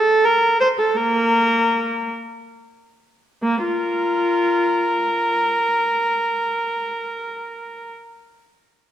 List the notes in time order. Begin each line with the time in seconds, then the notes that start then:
Already playing: A4
0.25 A#4
0.60 C5
0.79 A4
0.97 A#3 A#4
3.43 A#3
3.65 F4 A#4